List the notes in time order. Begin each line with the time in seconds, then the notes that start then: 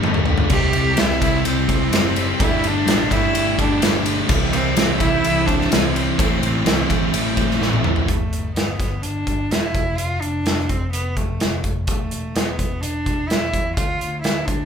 0.02 G1 G3 A3 D4 G4, mid tom
0.14 mid tom
0.26 A3 D4 G4, floor tom
0.38 floor tom
0.50 C2 C3 G3 C4 E4 G4, kick, crash
0.73 C2 C4 E4 G4, ride
0.96 C2 C3 G3 C4 E4 G4, snare, ride
1.11 snare
1.20 C2 C4 E4 G4, kick, ride
1.45 C2 C3 G3 C4 E4 G4, ride
1.67 C2 C4 E4 G4, kick, ride
1.91 F#1 G3 C4 E4 G4, snare, ride
2.16 C4 E4 G4, ride
2.38 G1 G3 A3 D4 G4, kick, ride
2.43 E4
2.63 G1 A3 D4 G4, ride
2.86 A1 G3 A3 D4 G4, snare, ride
3.10 G1 A3 D4 E4 G4, kick, ride
3.32 G1 G3 A3 D4 G4, ride
3.58 G1 A3 D4 G4, kick, ride
3.81 G1 G3 A3 D4 G4, snare, ride
4.04 A3 D4 G4, ride
4.28 C2 C3 E3 G3 C4 E4, kick, crash
4.51 C2 G3 C4 E4, ride
4.76 C2 C3 E3 G3 C4 E4, snare, ride
4.99 C2 G3 C4 E4, kick, ride
5.23 C2 C3 E3 G3 C4 E4, ride
5.46 C2 G3 C4 D4 E4, kick, ride
5.61 snare
5.70 C2 E3 G3 C4 E4, snare, ride
5.94 G3 C4 E4, ride
6.18 A1 A2 E3 A3 C4 E4, kick, ride
6.41 A1 A3 C4 E4, ride
6.65 C2 A2 E3 A3 C4 E4, snare, ride
6.88 A1 A3 C4 E4, kick, ride
7.12 A1 A2 E3 A3 C4 E4, ride
7.36 A1 A3 C4 E4, kick, ride
7.51 snare
7.60 A1 E3 A3 C4 E4, snare
7.73 high tom
7.83 A3 C4 E4, mid tom
7.96 floor tom
8.08 G1 A3, kick, closed hi-hat
8.32 G1, closed hi-hat
8.55 G1 B3, snare, closed hi-hat
8.80 G1, kick, snare, closed hi-hat
9.02 G1 D4, closed hi-hat
9.27 G1, kick, closed hi-hat
9.51 E1 E4, snare, closed hi-hat
9.74 F1, kick, closed hi-hat
9.98 F1 F4, closed hi-hat
10.21 F1 D4, closed hi-hat
10.45 F1, snare, closed hi-hat
10.59 snare
10.69 F1 C4, kick, closed hi-hat
10.92 F1 B3, closed hi-hat
11.17 F1 A3, kick, closed hi-hat
11.40 F1, snare, closed hi-hat
11.64 F1, kick, closed hi-hat
11.87 E1 A3, kick, closed hi-hat
12.11 E1, closed hi-hat
12.35 E1 B3, snare, closed hi-hat
12.59 E1, kick, closed hi-hat
12.81 E1 D4, closed hi-hat
13.06 E1, kick, closed hi-hat
13.28 E1 E4, snare, closed hi-hat
13.54 E2, kick, closed hi-hat
13.76 D2 F4, kick, closed hi-hat
14.01 D2, closed hi-hat
14.22 D2 E4, snare, closed hi-hat
14.46 D2 D4, kick, closed hi-hat